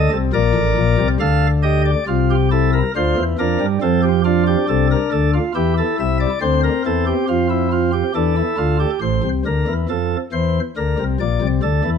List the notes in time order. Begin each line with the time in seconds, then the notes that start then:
Already playing: A4
0.13 C2 C3
0.33 A#1 A#2 A#4 D5
0.54 A1 A2
0.77 A#1 A#2
0.98 C2 C3
1.20 D2 D3 A4 F5
1.63 G4 D#5
1.85 D5
2.07 C2 C3 F4
2.31 G4
2.51 E4 A4
2.73 A#4
2.96 D2 D3 F4 C5
3.17 E2 E3
3.39 F2 F3 D4 A#4
3.60 G2 G3
3.82 F2 F3 C4 A4
4.03 G4
4.25 D4 F4
4.47 G4
4.68 C2 C3 A4
4.91 A#4
5.12 D2 D3 A4
5.34 F4
5.55 E2 E3 E4 G4
5.78 A4
6.00 C2 C3 E5
6.20 D5
6.41 D2 D3 C4 C5
6.64 A#4
6.86 E2 E3 A4
7.07 G4
7.28 F2 F3 F4
7.50 E4
7.72 F4
7.93 G4
8.15 E2 E3 D4 A4
8.36 E4
8.57 D2 D3 F4
8.80 G4
9.01 A1 A2 C5
9.23 C2 C3
9.45 D2 D3 A#4
9.67 E2 E3
9.89 F2 F3 A4
10.32 E2 E3 C5
10.77 D2 D3 A#4
10.99 C2 C3
11.20 A#1 A#2 D5
11.41 C2 C3
11.62 D2 D3 A4
11.84 E2 E3